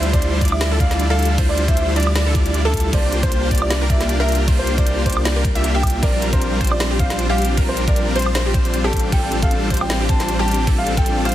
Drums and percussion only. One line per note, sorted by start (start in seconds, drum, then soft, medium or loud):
0.03 closed hi-hat medium
0.13 kick loud
0.13 closed hi-hat medium
0.22 closed hi-hat medium
0.41 kick medium
0.41 closed hi-hat soft
0.45 closed hi-hat medium
0.48 closed hi-hat medium
0.52 high woodblock medium
0.61 snare loud
0.61 closed hi-hat medium
0.61 crash soft
0.80 kick loud
0.80 closed hi-hat medium
0.91 snare soft
0.91 closed hi-hat medium
1.00 closed hi-hat medium
1.19 closed hi-hat soft
1.22 closed hi-hat medium
1.25 closed hi-hat medium
1.38 kick loud
1.38 closed hi-hat medium
1.38 crash medium
1.58 closed hi-hat medium
1.68 kick loud
1.68 closed hi-hat medium
1.77 closed hi-hat medium
1.96 closed hi-hat soft
2.00 closed hi-hat medium
2.03 closed hi-hat medium
2.07 high woodblock medium
2.15 snare loud
2.15 closed hi-hat medium
2.15 crash soft
2.35 kick loud
2.35 closed hi-hat medium
2.46 closed hi-hat medium
2.54 closed hi-hat medium
2.74 kick medium
2.74 closed hi-hat soft
2.77 closed hi-hat medium
2.80 closed hi-hat medium
2.93 kick loud
2.93 closed hi-hat medium
2.93 crash soft
3.12 closed hi-hat medium
3.23 kick loud
3.23 closed hi-hat medium
3.32 closed hi-hat medium
3.51 kick medium
3.51 closed hi-hat soft
3.55 closed hi-hat medium
3.58 closed hi-hat medium
3.62 high woodblock medium
3.70 snare loud
3.70 closed hi-hat medium
3.70 crash soft
3.90 kick loud
3.90 closed hi-hat medium
4.01 snare soft
4.01 closed hi-hat medium
4.09 closed hi-hat medium
4.29 closed hi-hat soft
4.32 closed hi-hat medium
4.35 closed hi-hat medium
4.48 kick loud
4.48 closed hi-hat medium
4.48 crash soft
4.67 closed hi-hat medium
4.78 kick loud
4.78 closed hi-hat medium
4.87 closed hi-hat medium
5.06 kick medium
5.06 closed hi-hat medium
5.10 closed hi-hat medium
5.12 closed hi-hat medium
5.17 high woodblock medium
5.25 snare loud
5.25 closed hi-hat medium
5.25 crash soft
5.45 kick loud
5.45 closed hi-hat medium
5.55 closed hi-hat medium
5.64 closed hi-hat medium
5.83 kick medium
5.83 closed hi-hat soft
5.83 high woodblock medium
5.87 closed hi-hat medium
5.90 closed hi-hat medium
6.03 kick loud
6.03 closed hi-hat medium
6.03 crash soft
6.22 closed hi-hat medium
6.33 kick loud
6.33 closed hi-hat medium
6.42 closed hi-hat medium
6.61 kick medium
6.61 closed hi-hat medium
6.64 closed hi-hat medium
6.67 closed hi-hat medium
6.72 high woodblock medium
6.80 snare loud
6.80 closed hi-hat medium
6.80 crash soft
6.99 kick loud
6.99 closed hi-hat medium
7.10 snare soft
7.10 closed hi-hat medium
7.19 closed hi-hat medium
7.38 closed hi-hat soft
7.42 closed hi-hat medium
7.45 closed hi-hat medium
7.57 kick loud
7.57 closed hi-hat medium
7.57 crash soft
7.77 closed hi-hat medium
7.88 kick loud
7.88 closed hi-hat medium
7.96 closed hi-hat medium
8.16 closed hi-hat soft
8.19 closed hi-hat medium
8.22 closed hi-hat medium
8.26 high woodblock medium
8.35 snare loud
8.35 closed hi-hat medium
8.35 crash soft
8.54 kick loud
8.54 closed hi-hat medium
8.65 closed hi-hat medium
8.74 closed hi-hat medium
8.93 kick medium
8.93 closed hi-hat medium
8.97 closed hi-hat medium
8.99 closed hi-hat medium
9.12 kick loud
9.12 closed hi-hat medium
9.12 crash soft
9.32 closed hi-hat medium
9.42 kick loud
9.42 closed hi-hat medium
9.51 closed hi-hat medium
9.70 kick medium
9.70 closed hi-hat soft
9.74 closed hi-hat medium
9.77 closed hi-hat medium
9.81 high woodblock medium
9.90 snare loud
9.90 closed hi-hat medium
9.90 crash soft
10.09 kick loud
10.09 closed hi-hat medium
10.20 snare soft
10.20 closed hi-hat medium
10.28 closed hi-hat medium
10.48 closed hi-hat soft
10.51 closed hi-hat medium
10.54 closed hi-hat medium
10.67 kick loud
10.67 closed hi-hat medium
10.67 crash soft
10.87 closed hi-hat medium
10.97 kick loud
10.97 closed hi-hat medium
11.06 closed hi-hat medium
11.25 closed hi-hat soft
11.29 closed hi-hat medium
11.32 closed hi-hat medium